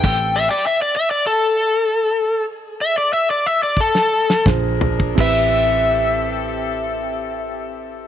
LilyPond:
<<
  \new Staff \with { instrumentName = "Overdriven electric guitar" } { \time 4/4 \key a \minor \tempo 4 = 89 << { g''4~ g''16 r2 r8. | r1 | r1 | } \\ { r8 e''16 d''16 e''16 d''16 e''16 d''16 a'2 | r8 e''16 d''16 e''16 d''16 e''16 d''16 a'4 r4 | e''1 | } >> }
  \new Staff \with { instrumentName = "Horn section" } { \time 4/4 \key a \minor <c' g' a'>4 r2. | r2. <d' aes' bes'>4 | <c' g' a'>1 | }
  \new Staff \with { instrumentName = "Reed electric piano" } { \time 4/4 \key a \minor r1 | r2. <d' f' aes' c''>4 | <c' e' g' b'>1 | }
  \new Staff \with { instrumentName = "Fingered electric bass" } { \clef bass \time 4/4 \key a \minor a,,4 r2. | r2. bes,,4 | a,,1 | }
  \new DrumStaff \with { instrumentName = "Drums" } \drummode { \time 4/4 <cymc hh bd>4 r4 r4 r4 | r4 r4 bd16 sn8 sn16 <bd sn toml>8 tomfh16 bd16 | <cymc bd>4 r4 r4 r4 | }
>>